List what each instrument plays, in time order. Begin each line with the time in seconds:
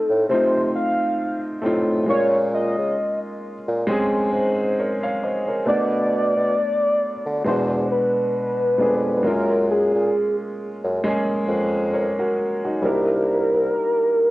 Already playing: upright piano A3 C4 D#4 F4, soft synth lead A4
0.10 bassoon A2
0.29 bassoon C3, upright piano A3 C4 D#4, soft synth lead C5
0.34 upright piano F4
0.75 soft synth lead F5
1.62 bassoon A2, upright piano A3 C4 D#4
1.66 upright piano F4
2.06 bassoon A#2, upright piano G#3 A#3 C#4, soft synth lead C#5
2.10 upright piano F4
2.54 soft synth lead D#5
2.78 bassoon C#3
3.68 bassoon A#2
3.87 upright piano G#3 C4 C#4
3.91 upright piano G#4
4.32 bassoon G#2
4.79 upright piano A#4 C#5
5.03 upright piano C#5 F5
5.24 upright piano C5 D#5
5.48 upright piano A#4 C#5
5.66 bassoon B2, upright piano A3 B3 D4, soft synth lead D5
5.70 upright piano F#4
6.36 bassoon B2
7.26 bassoon D3
7.44 bassoon E2, upright piano B2 G#3 D4, soft synth lead C5
7.49 upright piano F#4
7.91 soft synth lead B4
8.78 bassoon F2, upright piano G#3 B3 D4
8.82 upright piano G#4
9.23 bassoon F#2, upright piano G#3 A#3 C#4, soft synth lead A#4
9.27 upright piano F4
9.70 soft synth lead G#4
9.94 bassoon A#2
10.84 bassoon F#2
11.04 upright piano G#3 A#3 C#4
11.08 upright piano G#4
11.48 bassoon F2
11.93 upright piano A#4 C#5
12.19 upright piano F#4 A#4
12.64 upright piano D#4 F#4
12.82 bassoon C2, upright piano G3 A#3 D4, soft synth lead A#4
12.86 upright piano E4
13.52 bassoon C2